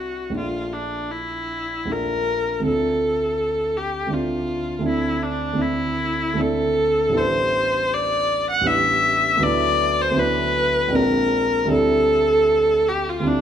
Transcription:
0.00 0.29 C2 soft
0.00 0.30 G3 soft
0.00 0.31 C4 soft
0.00 0.31 D4 soft
0.00 0.32 E4 soft
0.00 0.36 F#4 soft
0.30 1.83 A#1 soft
0.30 1.85 A3 soft
0.30 1.86 D4 soft
0.34 1.87 F4 soft
0.34 0.74 F4 medium
0.73 1.13 D4 soft
1.11 1.93 E4 medium
1.85 2.61 A#1 soft
1.85 2.60 A3 soft
1.85 2.62 D4 soft
1.90 2.63 F4 soft
1.90 2.65 A#4 medium
2.60 4.05 D2 soft
2.60 4.07 A3 soft
2.60 4.08 C4 soft
2.60 4.08 D4 soft
2.66 4.09 F4 soft
2.66 3.79 A4 medium
3.77 4.15 G4 soft
4.07 4.77 D2 soft
4.07 4.79 A3 soft
4.07 4.80 C4 soft
4.11 4.82 D4 soft
4.11 4.84 F4 soft
4.11 4.86 F4 medium
4.79 5.52 D2 soft
4.79 5.54 A3 soft
4.79 5.55 C4 soft
4.83 5.56 D4 soft
4.83 5.58 E4 soft
4.88 5.24 E4 medium
5.23 5.63 D4 medium
5.53 6.32 D2 soft
5.53 6.33 A3 soft
5.53 6.35 C4 soft
5.58 6.37 D4 soft
5.58 6.38 E4 soft
5.58 6.42 E4 medium
6.34 7.11 D2 soft
6.34 7.12 A3 soft
6.34 7.13 C4 soft
6.38 7.12 D4 soft
6.38 7.13 E4 soft
6.38 7.19 A4 medium
7.09 8.59 A1 soft
7.09 8.61 G3 soft
7.09 8.62 B3 soft
7.14 8.63 D4 soft
7.14 8.63 E4 soft
7.14 7.95 C5 medium
7.94 8.50 D5 medium
8.50 8.68 F#5 medium
8.61 9.38 A1 soft
8.61 9.38 G3 soft
8.61 9.39 B3 soft
8.66 9.40 D4 soft
8.66 9.41 E4 soft
8.66 9.45 E5 medium
9.37 10.10 D2 soft
9.37 10.11 F#3 soft
9.37 10.13 B3 soft
9.41 10.14 D4 soft
9.41 10.16 E4 soft
9.41 10.03 D5 medium
10.01 10.20 C5 medium
10.11 10.88 D2 soft
10.11 10.89 F#3 soft
10.11 10.90 B3 soft
10.16 10.91 D4 soft
10.16 10.91 E4 soft
10.16 10.97 B4 medium
10.88 11.66 A#1 soft
10.88 11.67 G#3 soft
10.88 11.67 C4 soft
10.92 11.68 D4 soft
10.92 11.69 F4 soft
10.92 11.72 A#4 medium
11.65 13.18 D2 soft
11.65 13.20 G3 soft
11.65 13.22 C4 soft
11.70 13.23 D4 soft
11.70 13.23 E4 soft
11.70 12.90 A4 medium
12.88 13.11 G4 medium
13.09 13.29 F4 medium
13.20 13.41 D2 soft
13.20 13.41 G3 soft
13.20 13.41 C4 soft
13.24 13.41 D4 soft
13.24 13.41 D4 medium
13.24 13.41 E4 soft

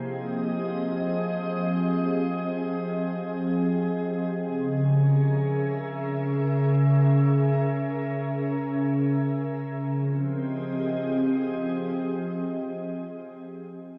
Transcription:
0.00 4.46 F3 medium
0.00 0.71 A#3 medium
0.00 4.46 C4 medium
0.00 4.46 G4 medium
0.00 9.85 G#4 medium
0.00 1.12 C5 medium
0.00 4.46 D#5 medium
4.46 9.85 C#3 medium
4.72 9.85 C#4 medium
4.72 9.85 A#4 medium
5.24 9.85 E5 medium
9.85 13.31 F3 medium
9.96 13.31 C4 medium
10.07 13.31 G4 medium
10.16 13.31 G#4 medium
10.26 13.31 D#5 medium

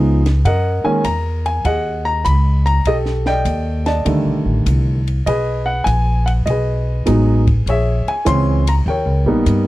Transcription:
0.00 0.43 C#2 medium
0.00 0.21 F3 medium
0.00 0.21 G#3 medium
0.00 0.21 B3 medium
0.00 0.22 D#4 medium
0.00 0.42 G#4 medium
0.00 0.42 B4 medium
0.00 0.22 F5 medium
0.26 snare soft
0.26 ride soft
0.45 0.83 F#2 medium
0.45 1.62 A#4 medium
0.45 1.62 D#5 medium
0.45 0.83 F#5 medium
0.45 kick soft
0.45 ride medium
0.84 1.02 D#3 medium
0.84 1.02 G#3 medium
0.84 1.03 A#3 medium
0.84 1.03 C#4 medium
0.84 1.03 G#5 medium
0.84 muted upright bass stroke soft
1.04 1.63 E2 medium
1.04 1.47 A#5 medium
1.04 kick soft
1.04 hi-hat pedal medium
1.04 ride medium
1.46 1.66 G#5 medium
1.46 ride soft
1.64 2.23 D#2 medium
1.64 2.82 G#4 medium
1.64 2.82 D#5 medium
1.64 2.03 F#5 medium
1.64 kick soft
1.64 ride soft
2.05 2.25 A#5 medium
2.25 2.83 C#2 medium
2.25 2.63 B5 loud
2.25 kick soft
2.25 hi-hat pedal medium
2.25 ride medium
2.66 2.86 A#5 loud
2.66 ride soft
2.85 3.43 B1 medium
2.85 4.03 G4 medium
2.85 4.03 A4 medium
2.85 2.96 D#5 medium
2.85 kick soft
2.85 ride medium
3.06 snare soft
3.26 3.86 D5 medium
3.26 3.85 D#5 medium
3.26 3.82 G5 loud
3.26 snare soft
3.45 4.03 D#2 medium
3.45 kick soft
3.45 hi-hat pedal medium
3.45 ride medium
3.86 5.03 D5 medium
3.86 5.02 D#5 medium
3.86 5.02 A5 medium
3.86 snare soft
3.86 ride soft
4.05 4.26 D2 medium
4.05 4.98 D3 medium
4.05 4.98 D#3 soft
4.05 4.98 G3 soft
4.05 4.98 A3 soft
4.05 kick soft
4.05 ride medium
4.25 4.45 B1 medium
4.45 4.64 A1 medium
4.66 5.24 C2 medium
4.66 kick soft
4.66 hi-hat pedal medium
4.66 ride medium
5.07 ride soft
5.26 5.84 B1 medium
5.26 6.43 G#4 medium
5.26 6.43 B4 medium
5.26 5.68 D#5 medium
5.26 kick soft
5.26 ride medium
5.66 5.86 F#5 medium
5.84 6.44 A#1 medium
5.84 6.23 G#5 loud
5.84 kick soft
5.84 hi-hat pedal medium
5.84 ride medium
6.26 6.31 F#5 medium
6.26 ride soft
6.46 7.04 B1 medium
6.46 7.42 D#5 medium
6.46 kick soft
6.46 ride medium
6.50 7.64 G#4 medium
6.50 7.64 B4 medium
7.06 7.64 A1 medium
7.06 7.42 F#3 medium
7.06 7.42 G#3 medium
7.06 7.43 B3 medium
7.06 7.43 D#4 medium
7.06 kick soft
7.06 hi-hat pedal medium
7.06 ride medium
7.47 kick medium
7.47 ride soft
7.66 8.04 A#1 medium
7.66 8.84 G#4 medium
7.66 8.83 C#5 medium
7.66 8.10 E5 medium
7.66 kick soft
7.66 ride medium
8.07 8.27 G#5 medium
8.07 muted upright bass stroke soft
8.07 ride soft
8.25 8.84 C#2 medium
8.25 8.62 E3 medium
8.25 8.62 G#3 medium
8.25 8.62 C4 medium
8.25 8.63 C#4 medium
8.25 8.68 C6 loud
8.25 kick soft
8.25 hi-hat pedal medium
8.25 ride medium
8.67 8.74 A#5 medium
8.67 ride medium
8.86 9.05 D#2 medium
8.86 9.67 A#4 medium
8.86 9.67 G5 medium
8.86 kick soft
8.90 9.67 C#5 medium
9.05 9.24 C#2 medium
9.25 9.44 A#1 medium
9.25 9.67 G3 medium
9.25 9.67 A#3 medium
9.25 9.67 B3 medium
9.25 9.67 D#4 medium
9.46 9.67 G2 medium
9.46 kick soft
9.46 hi-hat pedal medium
9.46 ride medium

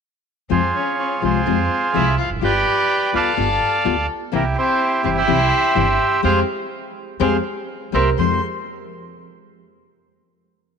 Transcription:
0.50 0.71 F2 medium
0.50 0.59 C3 medium
0.50 0.59 F3 medium
0.50 0.59 G#3 medium
0.50 0.59 C4 medium
0.50 0.73 C4 medium
0.50 0.59 F4 medium
0.50 1.24 F4 medium
0.50 1.23 G#4 medium
0.50 0.76 C5 medium
0.75 0.97 C#4 medium
0.75 0.98 C#5 medium
0.98 1.21 C#4 medium
0.98 1.21 C#5 medium
1.22 1.43 C2 medium
1.22 1.39 C3 medium
1.22 1.39 F3 medium
1.22 1.39 G#3 medium
1.22 1.90 C4 medium
1.22 1.40 C4 medium
1.22 1.40 F4 medium
1.22 2.16 F4 medium
1.22 2.15 G#4 medium
1.22 1.91 C5 medium
1.46 1.67 F2 medium
1.46 1.55 C3 medium
1.46 1.55 F3 medium
1.46 1.55 G#3 medium
1.46 1.55 C4 medium
1.46 1.56 F4 medium
1.94 2.15 C2 medium
1.94 2.03 C3 medium
1.94 2.03 F3 medium
1.94 2.03 G#3 medium
1.94 2.03 C4 medium
1.94 2.16 E4 medium
1.94 2.03 F4 medium
1.94 2.17 E5 medium
2.18 2.29 F4 medium
2.18 2.30 F5 medium
2.25 2.30 E1 soft
2.30 2.36 F1 medium
2.36 2.42 F#1 medium
2.41 2.62 G1 medium
2.41 2.51 G3 medium
2.41 2.51 B3 medium
2.41 2.51 F4 medium
2.41 3.09 G4 medium
2.41 3.35 B4 medium
2.41 3.14 D5 medium
2.41 3.11 G5 medium
3.13 3.34 D2 medium
3.13 3.30 G3 medium
3.13 3.30 B3 medium
3.13 3.31 F4 medium
3.13 4.06 A4 medium
3.13 4.06 D5 medium
3.13 4.06 F5 medium
3.17 4.07 A5 medium
3.37 3.58 G1 medium
3.37 3.46 G3 medium
3.37 3.46 B3 medium
3.37 3.47 F4 medium
3.84 4.06 D2 medium
3.84 3.94 G3 medium
3.84 3.94 B3 medium
3.84 3.94 F4 medium
4.32 4.53 C2 medium
4.32 4.41 C3 medium
4.32 4.42 E3 medium
4.32 4.42 G3 medium
4.32 4.43 A#3 medium
4.32 4.42 C4 medium
4.32 4.42 E4 medium
4.32 4.57 E4 medium
4.32 4.57 G4 medium
4.32 4.45 A#4 medium
4.56 5.01 C4 medium
4.56 5.49 E4 medium
4.56 5.17 G4 medium
4.56 5.02 C5 medium
5.03 5.25 G1 medium
5.03 5.21 C3 medium
5.03 5.21 E3 medium
5.03 5.22 G3 medium
5.03 5.21 C4 medium
5.03 5.10 C4 medium
5.03 5.22 E4 medium
5.03 5.11 C5 medium
5.16 6.20 E4 medium
5.16 6.21 G4 medium
5.16 6.21 C5 medium
5.16 6.21 E5 loud
5.27 5.49 C2 medium
5.27 5.37 C3 medium
5.27 5.37 E3 medium
5.27 5.37 G3 medium
5.27 5.37 C4 medium
5.27 5.37 E4 medium
5.75 5.97 G1 medium
5.75 5.84 C3 medium
5.75 5.85 E3 medium
5.75 5.85 G3 medium
5.75 5.85 C4 medium
5.75 5.85 E4 medium
5.75 6.23 G4 medium
6.23 6.42 F2 medium
6.23 6.39 G3 medium
6.23 6.39 G#3 medium
6.23 6.39 C4 medium
6.23 6.40 C4 medium
6.23 6.39 G4 medium
6.23 6.40 G#4 medium
6.23 6.40 C5 medium
6.23 6.40 F5 medium
7.20 7.39 F2 medium
7.20 7.36 G3 medium
7.20 7.36 G#3 medium
7.20 7.36 C4 medium
7.20 7.36 G4 medium
7.20 7.36 G#4 medium
7.20 7.37 G#4 medium
7.20 7.36 C5 medium
7.20 7.37 C5 medium
7.20 7.37 F5 medium
7.92 8.12 C2 medium
7.92 8.09 G3 medium
7.92 8.09 A#3 medium
7.92 8.09 C4 medium
7.92 8.10 C4 medium
7.92 8.10 G4 medium
7.92 8.10 A#4 medium
7.92 8.10 C5 medium
7.92 8.10 E5 medium
8.18 8.38 F2 medium
8.18 8.39 F2 soft
8.18 8.38 C3 medium
8.18 8.38 F3 medium
8.18 8.38 G#3 medium
8.18 8.38 C4 medium
8.18 8.38 G4 medium
8.18 8.41 C5 medium
8.18 8.41 C6 medium

